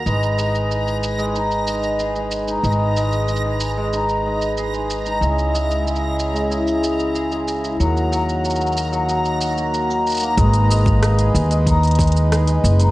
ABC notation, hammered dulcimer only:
X:1
M:4/4
L:1/16
Q:1/4=93
K:G#m
V:1 name="Hammered dulcimer" clef=bass
G,2 G,2 G, G2 G, D2 G,2 G G,2 D | G,2 G,2 G, G2 G, D2 G,2 G G,2 D | G,2 G,2 G, G2 G, E2 G,2 G G,2 E | F,2 F,2 F, F2 F, D z F A, d D z A, |
G,2 G,2 G, G2 G, D2 G,2 G G,2 D |]